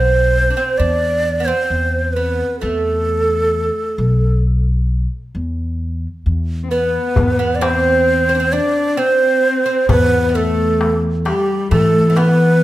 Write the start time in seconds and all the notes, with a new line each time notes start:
Already playing: B1 C4 C5
0.50 D4
0.57 C4
0.78 E2 D4 D5
1.40 B3
1.45 C4 C5
1.70 E2
2.13 B3 B4
2.60 E2 A3 A4
3.98 B1
5.35 E2
6.26 E2
6.63 C4
6.69 B3 B4
7.16 E2, darbuka dum
7.39 B3
7.55 D5
7.60 C4 C5, darbuka tek
8.29 C4
8.35 D4
8.40 C4
8.53 D4 D5
8.97 C4 C5, darbuka ka
9.66 C4
9.89 E2 B3 B4, darbuka dum
10.29 G3
10.34 A3 A4
10.81 darbuka tek
11.25 G3 G4, darbuka tek
11.71 E3 A3 A4, darbuka dum
12.09 A3 C4
12.16 B3 B4, darbuka tek